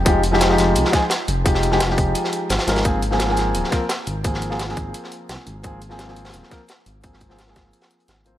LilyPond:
<<
  \new Staff \with { instrumentName = "Grand piano" } { \time 4/4 \key aes \major \tempo 4 = 172 <f aes ees' g'>8 r16 <f aes ees' g'>8 <f aes ees' g'>4~ <f aes ees' g'>16 <f aes ees' aes'>16 r4 r16 | <f aes ees' g'>8. <f aes ees' g'>16 r16 <f aes ees' g'>2~ <f aes ees' g'>16 <f aes ees' bes'>8 | <f bes c' aes'>8 r16 <f bes c' aes'>8 <f bes c' aes'>4~ <f bes c' aes'>16 <f bes c' bes'>16 r4 r16 | <f bes c' aes'>8. <f bes c' aes'>16 r16 <f bes c' aes'>2~ <f bes c' aes'>8. |
<f bes c' aes'>8 r16 <f bes c' aes'>8 <f bes c' aes'>4~ <f bes c' aes'>16 <f bes c' bes'>16 r4 r16 | <f bes c' aes'>8. <f bes c' aes'>16 r16 <f bes c' aes'>2~ <f bes c' aes'>16 <f bes c' c''>8 | }
  \new Staff \with { instrumentName = "Analog synth bass" } { \clef bass \time 4/4 \key aes \major f,,4. f,,8 c,8 r4 f,,8~ | f,,4. f,,8 r4 aes,,8 aes,,8~ | aes,,4. aes,,8 ees,,8 r4 aes,,8~ | aes,,4. aes,,8 r4 c,8 aes,,8~ |
aes,,4. aes,,8 ees,,8 r4 aes,,8~ | aes,,4. aes,,8 r4 aes,,4 | }
  \new DrumStaff \with { instrumentName = "Drums" } \drummode { \time 4/4 <hh bd>8 hh16 sn16 <hh sn>16 sn16 <hh sn>8 hh16 sn16 <hh bd sn>8 <hh sn>8 hh8 | <hh bd>16 sn16 hh16 sn16 <hh sn>16 sn16 <hh bd>8 hh16 sn16 hh8 <hh sn>16 <hh sn>16 <hh sn>16 <hh sn>16 | <hh bd>8 hh16 sn16 <hh sn>16 sn16 <hh sn>8 hh16 sn16 <hh bd sn>8 <hh sn>8 hh8 | <hh bd>16 sn16 hh16 sn16 <hh sn>16 sn16 <hh bd>8 hh16 sn16 hh8 <hh sn>8 hh8 |
<hh bd>8 hh16 sn16 <hh sn>16 sn16 hh16 <hh sn>32 <hh sn>32 hh16 sn16 <hh bd sn>8 <hh sn>8 hh8 | <hh bd>16 sn16 <hh bd>16 sn16 <hh sn>16 sn16 <hh bd sn>8 hh16 <hh sn>16 hh16 hh16 <hh sn>8 hh8 | }
>>